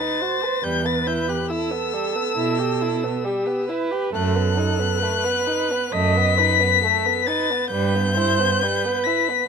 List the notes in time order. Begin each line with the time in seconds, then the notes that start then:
Already playing: B4 A6
0.00 D#4
0.20 F#4 C5
0.44 B4
0.63 E2 G3 B4 G6
0.86 B3 A6
1.07 E4 G6
1.28 G4 F#6
1.50 E4 A4 E6
1.71 B3
1.93 G3
2.15 B3
2.37 B2 E4
2.59 G4
2.82 E4
3.04 B3
3.24 G3 G4
3.47 B3
3.69 E4 B4
3.91 G4
4.12 F#2 A3 A4 F#6
4.36 B3
4.57 D#4
4.79 B3
4.99 A3 B4
5.24 B3
5.47 D#4
5.71 B3
5.92 F#2 A3 D#5 B6
6.17 B3
6.38 D#4 B4
6.61 B3
6.81 A3 A4
7.05 B3
7.26 D#4 B4 A6
7.51 B3
7.71 G2 G3 B4 G6
7.95 B3
8.15 E4 C5
8.40 B3
8.61 G3 B4
8.85 B3
9.04 E4 B6
9.28 B3